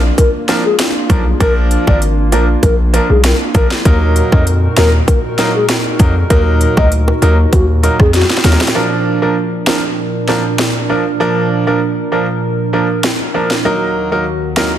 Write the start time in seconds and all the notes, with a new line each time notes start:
Already playing: A#1 A#3 D4 F4
0.18 A#4, kick, closed hi-hat, high bongo
0.48 F3 A#3 D4 A#4, snare, closed hi-hat, high bongo
0.65 G#4
0.79 finger snap, snare, closed hi-hat
1.09 B1 F3 A#3 D4 A#4, kick, closed hi-hat, low bongo
1.40 A#1 F3 A#3 D4 A#4, kick, closed hi-hat, high bongo
1.71 closed hi-hat
1.87 G#1 F3 A#3 D4 A#4 D5, kick, high bongo
2.02 closed hi-hat
2.32 A#1 F3 A#3 D4 A#4, closed hi-hat, low bongo
2.63 A#1 A#4, kick, closed hi-hat, high bongo
2.93 F3 A#3 D4 A#4, closed hi-hat, high bongo
3.10 B1 G#4
3.24 A#4, finger snap, snare, closed hi-hat
3.54 A#1 F3 A#3 D4 A#4, kick, closed hi-hat, low bongo
3.71 snare
3.85 D#2 A#2 F#3 A#3 D#4 F#4 A#4, kick, closed hi-hat, high bongo
4.16 closed hi-hat
4.32 F2 F#3 A#3 D#4 A#4 D#5, kick, high bongo
4.47 closed hi-hat
4.77 D#2 F#3 A#3 D#4 A#4, finger snap, snare, closed hi-hat, low bongo
5.08 A#4, kick, closed hi-hat, high bongo
5.38 F#3 A#3 D#4 A#4, snare, closed hi-hat, high bongo
5.55 G#4
5.69 finger snap, snare, closed hi-hat
5.99 F2 F#3 A#3 D#4 A#4, kick, closed hi-hat, low bongo
6.30 D#2 F#3 A#3 D#4 A#4, kick, closed hi-hat, high bongo
6.61 closed hi-hat
6.77 D2 F#3 A#3 D#4 A#4 D#5, kick, high bongo
6.92 closed hi-hat
7.08 high bongo
7.22 D#2 F#3 A#3 D#4 A#4, closed hi-hat, low bongo
7.53 D#2 F#4, kick, closed hi-hat, high bongo
7.83 F#3 A#3 D#4 A#4, closed hi-hat, high bongo
7.99 F2 G#4, kick, cross-stick
8.14 F#4, snare, closed hi-hat
8.22 snare
8.30 snare, high bongo
8.37 snare
8.44 D#2 F#3 A#3 D#4 A#4, snare, closed hi-hat, low bongo
8.53 snare
8.61 snare
8.68 snare
8.75 A#2 F3 A#3 D4 A#4
9.22 F3 A#3 D4 A#4
9.66 F3 A#3 D4 A#4, finger snap, snare
10.28 F3 A#3 D4 A#4, snare
10.58 finger snap, snare
10.89 F3 A#3 D4 A#4
11.20 F3 A#3 D4 A#4
11.67 F3 A#3 D4 A#4
12.12 F3 A#3 D4 A#4
12.73 F3 A#3 D4 A#4
13.03 finger snap, snare
13.34 F3 A#3 D4 A#4
13.51 snare
13.65 D#2 D#3 F#3 A#3 D#4 F#4 A#4
14.12 F#3 A#3 D#4 A#4
14.56 F#3 A#3 D#4 A#4, finger snap, snare